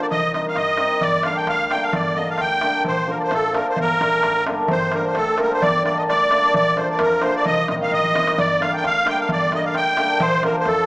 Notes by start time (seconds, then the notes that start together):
Already playing: D3 F3
0.02 D5
0.11 C2 D#5, darbuka dum
0.24 darbuka tek
0.32 D#3 G3 C4 D#4 D#5, darbuka tek
0.46 F5, darbuka tek
0.56 G2 D#5, darbuka tek
0.68 darbuka tek
0.77 D#3 G3 C4 D#4, darbuka tek
1.01 G1 D5, darbuka dum
1.23 D3 G3 A#3 D4 F5, darbuka tek
1.37 G5, darbuka tek
1.46 D2 F5, darbuka tek
1.71 D3 G3 A#3 D4 G5, darbuka tek
1.83 F5
1.93 G1 D5, darbuka dum
2.16 D3 G3 A#3 D4 D#5
2.28 F5, darbuka tek
2.38 D2 G5, darbuka tek
2.61 D3 G3 A#3 D4, darbuka tek
2.84 A#1 C5, darbuka dum
3.06 D3 F3 A#3 D4
3.10 A#4
3.19 D5, darbuka tek
3.24 C5
3.31 A1 A4, darbuka tek
3.52 D3 F3 A#3 D4 A#4, darbuka tek
3.70 C5
3.76 G1, darbuka dum
3.81 A#4
3.90 darbuka tek
4.00 A#1 D3 G3 A#3 D4, darbuka tek
4.13 darbuka tek
4.23 A1, darbuka tek
4.37 darbuka tek
4.46 G1 D3 G3 A#3 D4, darbuka tek
4.60 darbuka tek
4.68 G1 C5, darbuka dum
4.92 D3 G3 A#3 A#4, darbuka tek
4.96 D4
5.04 C5, darbuka tek
5.15 D2 A4, darbuka tek
5.37 D3 G3 A#3 D4 A#4, darbuka tek
5.42 A#4
5.51 C5
5.61 G1 D5, darbuka dum
5.83 D3 G3 A#3 D4 D5, darbuka tek
5.96 D#5, darbuka tek
6.08 D2 D5, darbuka tek
6.31 D3 G3 A#3 D4, darbuka tek
6.54 A#1 D5, darbuka dum
6.76 D3 F3 A#3 D4 C5, darbuka tek
6.89 D5, darbuka tek
6.99 F2 A#4, darbuka tek
7.21 D3 F3 A#3 D4 C5, darbuka tek
7.35 D5
7.44 C2 D#5, darbuka dum
7.59 darbuka tek
7.68 A#1 D#3 G3 C4 D#4 D#5, darbuka tek
7.81 F5, darbuka dum
7.91 A1 D#5, darbuka dum
8.04 darbuka dum
8.14 G1 D#3 G3 C4 D#4, darbuka tek
8.27 darbuka tek
8.38 G1 D5, darbuka dum
8.60 D3 G3 A#3 D4 F5, darbuka tek
8.73 G5, darbuka tek
8.83 D2 F5, darbuka tek
9.05 D3 G3 A#3 D4 G5, darbuka tek
9.09 G5
9.19 F5
9.29 G1 D5, darbuka dum
9.52 D3 G3 A#3 D4 D#5, darbuka tek
9.65 F5, darbuka tek
9.75 D2 G5, darbuka tek
9.97 D3 G3 A#3 D4, darbuka tek
10.20 A#1 C5, darbuka dum
10.43 D3 F3 A#3 D4 A#4, darbuka tek
10.57 C5, darbuka tek
10.65 F2 A4, darbuka tek